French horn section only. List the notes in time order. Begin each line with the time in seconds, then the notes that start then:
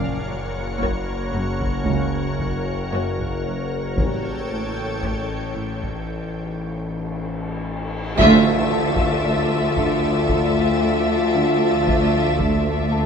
Already playing: A#3 C#4
1.86 A#3 C#4
3.97 G3 C#4
8.20 F3 F4
12.40 F3 F4